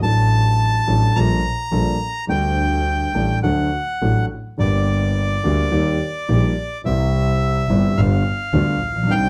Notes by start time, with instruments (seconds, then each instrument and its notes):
0.00 double bass A1, grand piano A1 A2 F#3 A3 D4 A4, bandoneon A5
0.87 double bass A1, grand piano A1 A2 F#3 A3 D4 A4
1.15 double bass A#1, grand piano A#1 A#2 G3 A#3 D4 A4, bandoneon A#5
1.72 double bass A#1, grand piano A#1 A#2 G3 A#3 D4 A4
2.27 double bass D2, grand piano D2 D3 G3 A3 D4, bandoneon G5
2.31 grand piano A4
3.14 double bass A1, grand piano A1 A2 G3 A3 D4 A4
3.43 double bass D2, grand piano D2 D3 F#3 A3 D4 A4, bandoneon F#5
4.01 double bass A1, grand piano A1 A2 F#3 A3 D4 A4
4.58 double bass G1, grand piano G1 G2 D3 G3 A#3 G4, bandoneon D5
5.44 grand piano D2 D3 G3 A#3 G4, double bass D2
5.71 grand piano D#2 D#3 G3 A#3 G4, double bass D#2
6.29 grand piano A#1 A#2 D#3 G3 A#3 G4, double bass A#1
6.84 double bass C2, grand piano C2 C3 E3 G3 C4 G4, bandoneon E5
7.69 double bass G1, grand piano G1 G2 E3 G3 C4 G4
7.97 double bass G1, grand piano G1 G2 D3 G3 B3 F4, bandoneon F5
8.53 double bass D2, grand piano D2 D3 G3 B3 F4
8.81 double bass A#1
8.90 grand piano A1
8.96 grand piano A#1
9.03 grand piano B1 D4
9.09 grand piano C2 C3 G3 C4 D#4, double bass C2, bandoneon G5